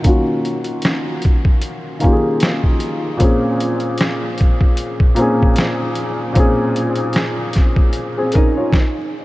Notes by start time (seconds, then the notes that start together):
Already playing: D#3 A#3 C#4 F4 F#4
0.02 D#3 A#3 C#4, kick, closed hi-hat
0.07 F4 F#4
0.45 closed hi-hat
0.64 closed hi-hat
0.82 snare, closed hi-hat
1.22 kick, closed hi-hat
1.45 kick
1.62 closed hi-hat
1.99 D#3 A#3 C#4, closed hi-hat
2.04 F4 G4, kick
2.12 G#4
2.40 snare, closed hi-hat
2.64 kick
2.80 closed hi-hat
3.17 A#2 A#3 C4, kick, closed hi-hat
3.22 C#4 G#4
3.60 closed hi-hat
3.80 closed hi-hat
3.98 snare, closed hi-hat
4.38 kick, closed hi-hat
4.61 kick
4.77 closed hi-hat
5.00 kick
5.15 A#2 A#3 C4, closed hi-hat
5.20 C#4 G#4
5.42 kick
5.56 snare, closed hi-hat
5.95 closed hi-hat
6.33 A#2 A#3 C4, kick, closed hi-hat
6.38 C#4 G#4
6.76 closed hi-hat
6.96 closed hi-hat
7.13 snare, closed hi-hat
7.53 kick, snare, closed hi-hat
7.76 kick
7.93 closed hi-hat
8.17 C4 G#4
8.32 C#4 A#4, kick, closed hi-hat
8.36 D#4
8.57 F4 C#5
8.73 kick, snare